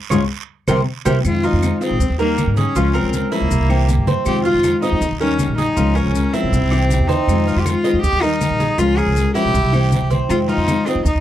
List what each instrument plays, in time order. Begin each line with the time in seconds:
0.10 upright bass C#2, cello G#2, nylon-string guitar G#3 A#3 C#4, cuban tres C#4 F4 G#4, high conga, long guiro, claves, maracas
0.68 upright bass C2, cello C3, nylon-string guitar A#3 C4 E4, cuban tres G4 A#4 C5, high conga, long guiro, claves, maracas
1.05 upright bass C2, cello C3, nylon-string guitar A#3 C4 E4, cuban tres G4 A#4 C5, high conga, long guiro, claves, maracas
1.24 upright bass F2, nylon-string guitar C3 D#3 G#3 C4 F4, cello F4, long guiro, claves, maracas
1.43 cello D#4, cuban tres F4, high conga, maracas
1.53 upright bass F2
1.62 nylon-string guitar D#3 G#3 C4 F4, high conga, short guiro, claves, maracas
1.81 nylon-string guitar D#3 G#3 C4 F4, cello C4, cuban tres D#5, high conga, short guiro, maracas
1.91 upright bass A#1
2.00 upright bass D#2, muted nylon-string guitar stroke, high conga, long guiro, maracas
2.10 upright bass D#2
2.18 nylon-string guitar G3 A#3 D#4 G4, cello A#3, cuban tres A#4, high conga, maracas
2.38 nylon-string guitar G3 A#3 D#4 G4, high conga, short guiro, claves, maracas
2.47 upright bass G#2
2.57 cello C#4, cuban tres G#4, high conga, short guiro, maracas
2.75 upright bass C#2, nylon-string guitar C#3 F3 G#3 C#4 F4 A#4, cuban tres F4, high conga, long guiro, maracas
2.94 cello C4, cuban tres A#4, high conga, claves, maracas
3.03 upright bass C#2
3.13 nylon-string guitar G#3 C#4 F4 A#4, high conga, short guiro, maracas
3.32 nylon-string guitar F3 G#3 C#4 F4 A#4, cello A#3, cuban tres E4, high conga, short guiro, maracas
3.41 upright bass C#2
3.51 upright bass C2, muted nylon-string guitar stroke, high conga, long guiro, maracas
3.60 upright bass C2
3.68 nylon-string guitar E3 A#3 C4 E4, cuban tres G4, claves, maracas
3.88 nylon-string guitar E3 A#3 C4 E4, high conga, short guiro, maracas
3.98 upright bass G2
4.07 cuban tres C4, high conga, short guiro, maracas
4.26 upright bass F2, nylon-string guitar C3 D#3 G#3 C4 F4, cello G4, long guiro, claves, maracas
4.44 cello F4, cuban tres F4, high conga, maracas
4.54 upright bass F2
4.64 nylon-string guitar D#3 G#3 C4 F4, high conga, short guiro, claves, maracas
4.82 nylon-string guitar D#3 G#3 C4 F4, cello D#4, cuban tres D#5, high conga, short guiro, maracas
4.92 upright bass F2
5.01 upright bass D#2, muted nylon-string guitar stroke, high conga, long guiro, maracas
5.11 upright bass D#2
5.20 nylon-string guitar G3 A#3 D#4 G4, cello C#4, cuban tres A#4, high conga, maracas
5.39 nylon-string guitar G3 A#3 D#4 G4, high conga, short guiro, claves, maracas
5.48 upright bass A#1
5.57 cello D#4, cuban tres G#4, high conga, short guiro, maracas
5.77 upright bass C#2, nylon-string guitar C#3 F3 G#3 C#4 F4 A#4, cuban tres F4, high conga, long guiro, maracas
5.95 cello C#4, cuban tres A#4, claves, maracas
6.05 upright bass C#2
6.14 nylon-string guitar G#3 C#4 F4 A#4, high conga, short guiro, maracas
6.32 nylon-string guitar F3 G#3 C#4 F4 A#4, cello C4, cuban tres E4, high conga, short guiro, maracas
6.43 upright bass C#2
6.52 upright bass C2, muted nylon-string guitar stroke, high conga, long guiro, maracas
6.61 upright bass C2
6.71 nylon-string guitar E3 A#3 C4 E4, cuban tres G4, claves, maracas
6.90 nylon-string guitar E3 A#3 C4 E4, high conga, short guiro, maracas
6.99 upright bass E2
7.08 cuban tres C4, cello D#4, high conga, short guiro, maracas
7.27 upright bass F2, nylon-string guitar C3 D#3 G#3 C4 F4, long guiro, claves, maracas
7.47 cuban tres F4, high conga, maracas
7.56 upright bass F2, cello G4
7.65 nylon-string guitar D#3 G#3 C4 F4, cello F4, high conga, short guiro, claves, maracas
7.84 nylon-string guitar D#3 G#3 C4 F4, cuban tres D#5, high conga, short guiro, maracas
7.93 upright bass F2
8.02 upright bass D#2, cello G4, muted nylon-string guitar stroke, high conga, long guiro, maracas
8.12 upright bass D#2
8.21 nylon-string guitar G3 A#3 D#4 G4, cello D#4, cuban tres A#4, high conga, maracas
8.40 nylon-string guitar G3 A#3 G4, high conga, short guiro, claves, maracas
8.50 upright bass A#1
8.60 cuban tres G#4, high conga, short guiro, maracas
8.78 upright bass C#2, nylon-string guitar C#3 F3 G#3 C#4 F4 A#4, cuban tres F4, cello F4, long guiro, maracas
8.97 cello G#4, cuban tres A#4, high conga, claves, maracas
9.07 upright bass C#2
9.16 nylon-string guitar G#3 C#4 A#4, high conga, short guiro, maracas
9.34 nylon-string guitar F3 G#3 C#4 F4 A#4, cuban tres E4, cello G4, high conga, short guiro, maracas
9.45 upright bass B1
9.54 upright bass C2, muted nylon-string guitar stroke, high conga, long guiro, maracas
9.63 upright bass C2
9.72 nylon-string guitar E3 A#3 C4 E4, cuban tres G4, claves, maracas
9.91 nylon-string guitar E3 A#3 C4 E4, high conga, short guiro, maracas
10.01 upright bass C2
10.10 cuban tres C4, high conga, short guiro, maracas
10.29 upright bass F2, nylon-string guitar C3 D#3 G#3 C4 F4, cello F4, long guiro, claves, maracas
10.49 cello D#4, cuban tres F4, high conga, maracas
10.57 upright bass F2
10.67 nylon-string guitar D#3 G#3 C4 F4, high conga, short guiro, claves, maracas
10.86 nylon-string guitar D#3 G#3 C4 F4, cello C4, cuban tres D#5, high conga, short guiro, maracas
10.95 upright bass F2
11.05 upright bass D#2, cello D#4, muted nylon-string guitar stroke, high conga, long guiro, maracas
11.15 upright bass D#2